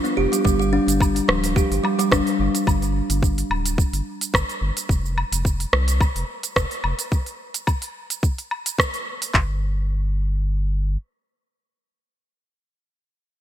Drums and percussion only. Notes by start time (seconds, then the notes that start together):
0.05 open hi-hat, cabasa
0.33 open hi-hat, cabasa
0.45 kick, cabasa
0.62 cabasa
0.88 open hi-hat, cabasa
1.01 kick, cabasa, low woodblock
1.16 open hi-hat, cabasa
1.29 cross-stick
1.44 open hi-hat, cabasa
1.56 kick, cabasa
1.72 open hi-hat, cabasa
1.85 low woodblock
1.99 open hi-hat, cabasa
2.12 kick, cross-stick, cabasa
2.27 open hi-hat, cabasa
2.55 open hi-hat, cabasa
2.67 kick, cabasa, low woodblock
2.82 open hi-hat, cabasa
3.10 open hi-hat, cabasa
3.23 kick, cabasa
3.38 open hi-hat, cabasa
3.51 low woodblock
3.66 open hi-hat, cabasa
3.78 kick, cabasa
3.93 open hi-hat, cabasa
4.21 open hi-hat, cabasa
4.34 kick, cross-stick, cabasa, low woodblock
4.49 open hi-hat, cabasa
4.77 open hi-hat, cabasa
4.89 kick, cabasa
5.06 cabasa
5.18 low woodblock
5.32 open hi-hat, cabasa
5.45 kick, cabasa
5.60 open hi-hat, cabasa
5.73 cross-stick
5.88 open hi-hat, cabasa
6.01 kick, cabasa, low woodblock
6.16 open hi-hat, cabasa
6.43 open hi-hat, cabasa
6.56 kick, cross-stick, cabasa
6.71 open hi-hat, cabasa
6.84 low woodblock
6.99 open hi-hat, cabasa
7.12 kick, cabasa
7.26 open hi-hat, cabasa
7.54 open hi-hat, cabasa
7.67 kick, cabasa, low woodblock
7.82 open hi-hat, cabasa
8.10 open hi-hat, cabasa
8.23 kick, cabasa
8.38 open hi-hat, cabasa
8.51 low woodblock
8.66 open hi-hat, cabasa
8.79 kick, cross-stick, cabasa
8.94 open hi-hat, cabasa
9.22 open hi-hat, cabasa
9.34 kick, clap